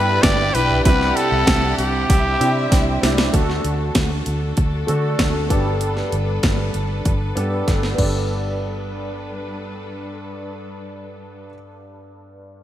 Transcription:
Already playing: fingered electric bass G2, grand piano G2 B3 D4 E4 G4, string section G3 D4 E4, violin section B4 B5, trumpet B4
0.22 fingered electric bass G1, violin section G4 G5, trumpet D5, kick, snare, open hi-hat
0.54 fingered electric bass B1, grand piano B3 D4 E4 G4, trumpet B4, open hi-hat
0.70 floor tom
0.85 fingered electric bass C2, grand piano C3 C4 D4 E4 G4, string section C3, violin section G4 F#5, trumpet B4, kick, open hi-hat
1.01 snare
1.16 trumpet A4, open hi-hat
1.32 fingered electric bass C2
1.47 fingered electric bass C2, kick, snare, open hi-hat
1.78 fingered electric bass C2, trumpet G4, open hi-hat
2.09 fingered electric bass C2, violin section E4 E5, kick, open hi-hat
2.39 fingered electric bass C3, grand piano C4 D4 E4 G4, open hi-hat
2.72 fingered electric bass C2, kick, snare, open hi-hat
3.01 fingered electric bass C2, grand piano C4 D4 E4 G4, snare, open hi-hat
3.18 snare
3.33 fingered electric bass D2, grand piano D3 A3 D4 F#4 A4, string section D3 D4 F#4 A4, kick, closed hi-hat
3.50 snare
3.65 fingered electric bass D2, closed hi-hat
3.95 fingered electric bass D2, kick, snare, closed hi-hat
4.26 fingered electric bass D2, closed hi-hat
4.57 fingered electric bass D2, kick, closed hi-hat
4.87 fingered electric bass D3, grand piano A3 D4 F#4 A4, closed hi-hat
5.19 fingered electric bass D2, kick, snare, closed hi-hat
5.49 fingered electric bass G1, grand piano G2 B3 D4 G4 A4, string section G3 B4, kick, closed hi-hat
5.81 closed hi-hat
5.97 snare
6.12 fingered electric bass G1, closed hi-hat
6.43 fingered electric bass G1, kick, snare, closed hi-hat
6.74 fingered electric bass G1, closed hi-hat
7.05 fingered electric bass G1, kick, closed hi-hat
7.35 fingered electric bass G2, grand piano B3 D4 G4 A4, closed hi-hat
7.68 fingered electric bass G1, kick, snare, closed hi-hat
7.83 snare
7.95 fingered electric bass G1, grand piano G2 B3 D4, kick, crash
8.00 string section G3 D4 A4 B4, grand piano G4 A4

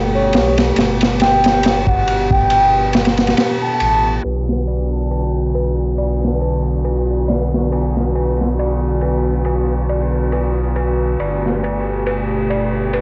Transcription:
Already playing: sub bass G1, ambient pad B2 A3 G4
0.14 soft synth lead C#5
0.33 sub bass B1, snare, ride
0.58 snare, ride
0.76 sub bass G1, ambient pad B3, snare, ride
1.01 snare, ride
1.20 soft synth lead G5, snare, ride
1.44 snare, ride
1.63 snare, ride
1.87 soft synth lead F#5, kick
2.08 ride
2.31 soft synth lead G5, kick
2.50 ride
2.93 snare, ride
3.05 snare, ride
3.18 snare, ride
3.27 snare, ride
3.37 snare, ride
3.62 soft synth lead A5
3.80 sub bass A1, ride
4.23 sub bass B1, ambient pad D3 B3 F#4, synth bell B4, ride
4.49 snare
4.67 synth bell D5, ride
5.11 synth bell B4, ride
5.55 synth bell B4, ride
5.98 synth bell D5, ride
6.24 snare
6.41 synth bell B4, ride
6.85 synth bell B4, ride
7.28 synth bell D5, snare, open hi-hat
7.54 snare
7.72 synth bell B4, ride
7.97 snare
8.15 synth bell B4, ride
8.41 snare
8.59 synth bell D5, ride
9.01 synth bell B4, ride
9.45 synth bell B4, ride
9.89 synth bell D5, ride
10.32 synth bell B4, ride
10.76 synth bell B4, ride
11.19 sub bass G1, ambient pad B2 A3 G4, synth bell D5, ride
11.46 snare
11.63 synth bell B4, ride
12.06 synth bell B4, ride
12.50 synth bell D5, ride
12.93 synth bell B4, ride

